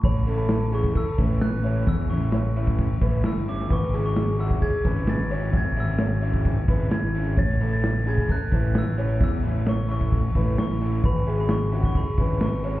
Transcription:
<<
  \new Staff \with { instrumentName = "Glockenspiel" } { \time 4/4 \key a \major \tempo 4 = 131 b''8. b''8. cis'''8 e'''4 fis'''4 | e'''8 cis'''4. r4 e'''8 d'''8 | cis'''8. cis'''8. e'''8 gis'''4 a'''4 | gis'''8 e'''4. r4 gis'''4 |
a'''8. a'''8. gis'''8 fis'''4 e'''4 | e'''4 cis'''8 cis'''4. cis'''4 | b''8. b''16 cis'''8. cis'''16 b''4 cis'''8. r16 | }
  \new Staff \with { instrumentName = "Clean electric guitar" } { \time 4/4 \key a \major cis''8 a'4 gis'8 a'8 b'4 cis''8 | e''4 cis''8 e''4 b'8 e'4 | b'8 gis'4 fis'8 gis'8 b'4 cis''8 | e''4 cis''8 e''4 b'8 e'4 |
cis''8 a'4 gis'8 a'8 b'4 cis''8 | e''4 cis''8 e''4 b'8 e'4 | b'8 gis'4 fis'8 gis'8 b'4 cis''8 | }
  \new Staff \with { instrumentName = "Overdriven electric guitar" } { \time 4/4 \key a \major r8 <e a cis' e'>8 r8 <e a cis' e'>8 r8 <e a cis' e'>8 r8 <e a cis' e'>8 | r8 <e a cis' e'>8 r8 <e a cis' e'>8 r8 <e a cis' e'>8 r8 <e a cis' e'>8 | r8 <cis gis cis' e'>8 r8 <cis gis cis' e'>8 r8 <cis gis cis' e'>8 r8 <cis gis cis' e'>8 | r8 <cis gis cis' e'>8 r8 <cis gis cis' e'>8 r8 <cis gis cis' e'>8 r8 <cis gis cis' e'>8 |
r8 <e a cis' e'>8 r8 <e a cis' e'>8 r8 <e a cis' e'>8 r8 <e a cis' e'>8 | r8 <e a cis' e'>8 r8 <e a cis' e'>8 r8 <e a cis' e'>8 r8 <e a cis' e'>8 | r8 <cis gis cis' e'>8 r8 <cis gis cis' e'>8 r8 <cis gis cis' e'>8 r8 <cis gis cis' e'>8 | }
  \new Staff \with { instrumentName = "Fingered electric bass" } { \clef bass \time 4/4 \key a \major a,,2 r8 a,,8. a,,8. | e,8 a,,2 a,,8 r16 g,,8. | gis,,2 r8 gis,,8. gis,,8. | gis,,8 gis,,2 gis,,8 r16 gis,,8. |
a,,2 r8 a,,8. a,,8. | e,8 a,,2 a,,8 r16 a,,8. | gis,,2 r8 gis,,8. gis,,8. | }
  \new DrumStaff \with { instrumentName = "Drums" } \drummode { \time 4/4 <cymc bd>16 sn16 cymc8 <cymc sn>8 cymc16 bd16 <cymc bd>8 <cymc bd>8 <cymc sn>16 sn16 cymc8 | <cymc bd>16 sn16 cymc8 <cymc sn>8 cymc16 bd16 <cymc bd>8 <cymc bd>8 <cymc sn>16 sn16 cymc8 | <cymc bd>16 sn16 cymc8 <cymc sn>8 cymc16 bd16 <cymc bd>8 <cymc bd>8 <cymc sn>16 sn16 cymc8 | <cymc bd>16 sn16 cymc8 <cymc sn>8 cymc16 bd16 <cymc bd>8 <cymc bd>8 <cymc sn>16 sn16 cymc8 |
<cymc bd>16 sn16 cymc8 <cymc sn>8 cymc16 bd16 <cymc bd>8 <cymc bd>8 <cymc sn>16 sn16 cymc8 | <cymc bd>16 sn16 cymc8 <cymc sn>8 cymc16 bd16 <cymc bd>8 <cymc bd>8 <cymc sn>16 sn16 cymc8 | <cymc bd>16 sn16 cymc8 <cymc sn>8 cymc16 bd16 <cymc bd>8 <cymc bd>8 <cymc sn>16 sn16 cymc8 | }
>>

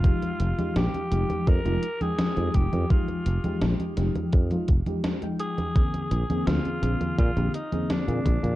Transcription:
<<
  \new Staff \with { instrumentName = "Alto saxophone" } { \time 4/4 \key f \dorian \tempo 4 = 84 f'4 g'4 bes'8. aes'8. g'8 | f'4 r2 r8 aes'8~ | aes'4 f'4 f'8 ees'8 d'4 | }
  \new Staff \with { instrumentName = "FM electric piano" } { \time 4/4 \key f \dorian <f aes ees' g'>8. <f aes ees' g'>8. <f aes ees' g'>8. <f aes ees' f'>16 r16 <f aes ees' g''>8 <f aes ees' g'>8. | <f aes ees' g'>8. <f aes ees' g'>8. <f aes ees' g'>8. <f aes ees' f'>16 r16 <f aes ees' g'>8 <f aes ees' g''>8. | <d bes c' aes'>8. <d bes c' aes'>8. <d bes c' aes'>8. <d bes c' g'>16 r16 <d bes c' aes'>8 <d bes c' aes'>8. | }
  \new Staff \with { instrumentName = "Fretless electric bass" } { \clef bass \time 4/4 \key f \dorian r8 f,,16 r16 bes,,16 r16 f,,16 r16 f,16 f,,16 r8. f,16 f,,16 f,16 | r8 f,,16 r16 bes,,16 r16 f,,16 r16 f,16 r16 f,,16 r4 r16 | r8 bes,,16 r16 d,16 r16 bes,,16 r16 bes,16 bes,,16 r8. bes,16 bes,,16 bes,16 | }
  \new DrumStaff \with { instrumentName = "Drums" } \drummode { \time 4/4 <cgho hh bd>16 <cgho hh>16 hh16 <cgho hh>16 <cgho hh sn>16 <cgho hh>16 hh16 <cgho hh>16 <cgho hh bd>16 <cgho hh>16 hh16 <cgho hh>16 <cgho hh sn>16 <cgho hh>16 <hh bd>16 <cgho hh>16 | <cgho hh bd>16 <cgho hh>16 hh16 <cgho hh>16 <cgho hh sn>16 <cgho hh>16 <hh sn>16 <cgho hh>16 <cgho hh bd>16 <cgho hh>16 <hh bd>16 <cgho hh>16 <cgho hh sn>16 <cgho hh>16 hh16 <cgho hh>16 | <cgho hh bd>16 <cgho hh>16 hh16 <cgho hh>16 <cgho hh sn>16 <cgho hh>16 hh16 <cgho hh>16 <cgho hh bd>16 <cgho hh>16 hh16 <cgho hh>16 <cgho hh sn>16 <cgho hh>16 <hh bd>16 <cgho hh>16 | }
>>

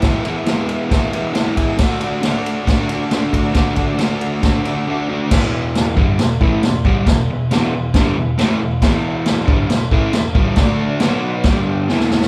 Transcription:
<<
  \new Staff \with { instrumentName = "Transistor combo organ" } { \time 4/4 \key e \mixolydian \tempo 4 = 137 <gis' b' e''>8 <gis' b' e''>8 <gis' b' e''>8 <gis' b' e''>8 <gis' b' e''>8 <gis' b' e''>8 <gis' b' e'' fis''>8 <gis' b' e'' gis''>8 | <fis' a' d''>8 <fis' a' d''>8 <fis' a' d''>8 <fis' a' d''>8 <fis' a' d''>8 <fis' a' d''>8 <fis' a' d''>8 <fis' a' d''>8 | <fis' a' d''>8 <fis' a' d''>8 <fis' a' d''>8 <fis' a' d''>8 <fis' a' d''>8 <fis' a' d''>8 <fis' a' d''>8 <fis' a' d''>8 | <e' gis' b'>8 <e' gis' b'>8 <e' gis' b'>8 <e' gis' b'>8 <e' gis' b'>8 <e' gis' b'>8 <e' gis' b'>8 <e' gis' b'>8 |
<e' gis' b'>8 <e' gis' b'>8 <e' gis' b'>8 <e' gis' b'>8 <e' gis' b'>8 <e' gis' b'>8 <e' gis' b'>8 <e' gis' b'>8 | <e' gis' b'>8 <e' gis' b'>8 <e' gis' b'>8 <e' gis' b'>8 <e' gis' b'>8 <e' gis' b'>8 <e' gis' b'>8 <e' gis' b'>8 | <d' a' d''>8 <d' a' d''>8 <fis' b' fis''>8 <fis' b' fis''>8 <g' d'' g''>8 <g' d'' g''>8 <gis' b' e'' gis''>8 <gis' b' e''>8 | }
  \new Staff \with { instrumentName = "Overdriven electric guitar" } { \clef bass \time 4/4 \key e \mixolydian <e gis b e'>8 <gis b e'>8 <e gis b e'>4 <e gis b e'>8 <gis b e'>8 <e gis b e'>8 <gis b e'>8 | <d a d' fis'>8 <a d' fis'>8 <d a d' fis'>4 <d a d' fis'>8 <a d' fis'>8 <d a d' fis'>8 <a d' fis'>8 | <d a d' fis'>8 <a d' fis'>8 <d a d' fis'>4 <d a d' fis'>8 <a d' fis'>8 <d a d' fis'>8 <a d' fis'>8 | <e, b, e>4. <g, d g>8 <e, b,>8 <a, e a>8 <e, b,>8 <g, d g>8 |
<e, b,>8 <e, b,>8 <e, b, e>8 <e, b,>8 <g, d g>8 <e, b,>8 <a, e a>8 <e, b,>8 | <e, b, e>4. <g, d g>8 <e, b,>8 <a, e a>8 <e, b,>8 <g, d g>8 | <d a d'>4 <b, fis b>4 <g, d g>4 <e, b, e>4 | }
  \new DrumStaff \with { instrumentName = "Drums" } \drummode { \time 4/4 <bd cymr sn>8 cymr8 <cymr sn>8 cymr8 <bd cymr sn>8 cymr8 <cymr sn>8 <bd cymr>8 | <cymc bd sn>8 cymr8 <cymr sn>8 cymr8 <bd cymr sn>8 cymr8 <cymr sn>8 <bd cymr>8 | <bd cymr sn>8 <bd cymr>8 <cymr sn>8 cymr8 <bd cymr sn>8 cymr8 r4 | <cymc bd sn>4 <cymc sn>8 bd8 <cymc sn>8 bd8 <cymc sn>8 bd8 |
<cymc bd sn>4 <cymc sn>4 <cymc bd sn>4 <cymc sn>4 | <cymc bd sn>4 <cymc sn>8 bd8 <cymc sn>8 bd8 <cymc sn>8 bd8 | <cymc bd sn>4 <cymc sn>4 <cymc bd sn>4 sn16 sn16 sn16 sn16 | }
>>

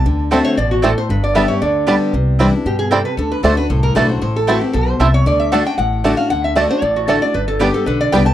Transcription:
<<
  \new Staff \with { instrumentName = "Resonator guitar played with a steel bar" } { \time 4/4 \key d \mixolydian \tempo 4 = 230 a''4 e''8 cis''8 d''8 fis'8 a'8 c''8 | b'8 d''8 e''8 cis''8 d''4.~ d''16 r16 | r2 g'8 aes'8 a'8 b'8 | a'8 b'8 c''8 b'8 a'8 bes'8 b'8 c''8 |
c''8 a'8 fis'8 g'8 a'8 c''8 e''8 cis''8 | d''8 e''8 fis''8 g''8 fis''4 r8 f''8 | fis''8 e''8 d''8 c''8 d''8 fis'8 a'8 d''8 | b'8 a'8 g'8 a'8 b'8 d''8 g''8 a''8 | }
  \new Staff \with { instrumentName = "Mandolin" } { \time 4/4 \key d \mixolydian r4 <c' fis' d'' a''>8 r4. <c' fis' d'' a''>8 r8 | r4 <b g' d'' a''>8 r4. <b g' d'' a''>8 r8 | r4 <c' e' d'' g''>8 r4. <c' e' d'' g''>8 r8 | r4 <a fis' d'' a''>8 r4. <a fis' d'' a''>8 r8 |
r4 <a e' c'' a''>8 r4. <a e' c'' a''>8 r8 | r4 <a fis' d'' a''>8 r4. <a fis' d'' a''>8 r8 | r4 <a fis' d'' a''>8 r4. <a fis' d'' a''>8 r8 | r4 <b g' d'' g''>8 r4. <b g' d'' g''>8 r8 | }
  \new Staff \with { instrumentName = "Five-string banjo" } { \time 4/4 \key d \mixolydian r4 <a c' d'>8 r4. <a c' d'>8 r8 | r4 <g b d'>8 r4. <g b d'>8 r8 | r4 <g c' d'>8 r4. <g c' d'>8 r8 | r4 <a d'>8 r4. <a d'>8 r8 |
r4 <a c' e'>8 r4. <a c' e'>8 r8 | r4 <a d'>8 r4. <a d'>8 r8 | r4 <a d'>8 r4. <a d'>8 r8 | r4 <g b d'>8 r4. <g b d'>8 r8 | }
  \new Staff \with { instrumentName = "Steel-string acoustic guitar" } { \time 4/4 \key d \mixolydian << { r4 <d a c' fis'>4 r2 | r4 <d g b g'>8 <b g'>8 r4 <d g b g'>4 | r4 <e g d' e'>8 <d' e'>8 r2 | r4 <d a d' fis'>8 <d' fis'>8 r4 <d a d' fis'>8 <d' fis'>8 |
r4 <e a c' e'>8 <c' e'>8 r2 | r4 <d a d' fis'>8 <d' fis'>8 r4 <d a d' fis'>8 <d' fis'>8 | r4 <d a d' fis'>8 <d' fis'>8 r4 <d a d' fis'>8 fis'8 | r4 <d g b g'>8 <b g'>8 r4 <d g b g'>8 <b g'>8 | } \\ { d2 b,4 a,4 | g,2 d2 | c2 b,4 c4 | d2 a,2 |
a,2 b,4 c4 | d2 a,2 | d2 a,2 | g,2 d2 | } >> }
  \new Staff \with { instrumentName = "Upright bass" } { \clef bass \time 4/4 \key d \mixolydian d,2 a,,2 | g,,2 d,2 | c,2 g,2 | d,4 d,4 c,4 b,,4 |
a,,2 b,,4 c,4 | d,2 a,,2 | d,2 a,,2 | g,,2 b,,4 c,4 | }
>>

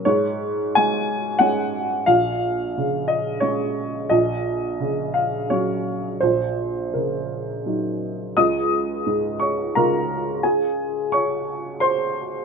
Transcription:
<<
  \new Staff \with { instrumentName = "Upright piano" } { \time 3/4 \key des \major \tempo 4 = 88 des''4 aes''4 ges''4 | f''4. ees''8 des''4 | ees''4. f''8 des''4 | c''4 bes'4. r8 |
<ees'' ees'''>4. <des'' des'''>8 <bes' bes''>4 | <aes' aes''>4 <des'' des'''>4 <c'' c'''>4 | }
  \new Staff \with { instrumentName = "Upright piano" } { \clef bass \time 3/4 \key des \major aes,4 aes4 <aes des'>4 | bes,,4 des4 <aes des'>4 | bes,,4 des4 <ges des'>4 | bes,,4 des4 <ges ees'>4 |
des,4 aes,4 <des aes f'>4~ | <des aes f'>2. | }
>>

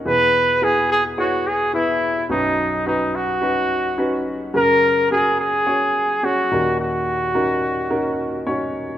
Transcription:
<<
  \new Staff \with { instrumentName = "Trumpet" } { \time 4/4 \key dis \phrygian \tempo 4 = 107 b'4 gis'8 gis'8 fis'8 gis'8 e'4 | dis'4 dis'8 fis'2 r8 | ais'4 gis'8 gis'4. fis'4 | fis'2. r4 | }
  \new Staff \with { instrumentName = "Grand piano" } { \time 4/4 \key dis \phrygian <b e' gis' b'>4 <b e' gis' b'>4 <b e' gis' cis''>4 <b e' gis' b'>4 | <cis' dis' fis' b'>4 <cis' dis' fis' b'>4 <cis' dis' fis' b'>4 <cis' dis' fis' b'>4 | <cis' fis' gis' ais'>4 <cis' fis' gis' ais'>4 <cis' fis' gis' cis''>4 <cis' fis' gis' cis''>8 <cis' dis' fis' ais'>8~ | <cis' dis' fis' ais'>4 <cis' dis' fis' ais'>4 <cis' dis' fis' ais'>4 <cis' dis' fis' cis''>4 | }
  \new Staff \with { instrumentName = "Grand piano" } { \clef bass \time 4/4 \key dis \phrygian <e, b,>1 | <b,, fis,>1 | <fis, cis>2.~ <fis, cis>8 <dis, ais,>8~ | <dis, ais,>2.~ <dis, ais,>8 r8 | }
>>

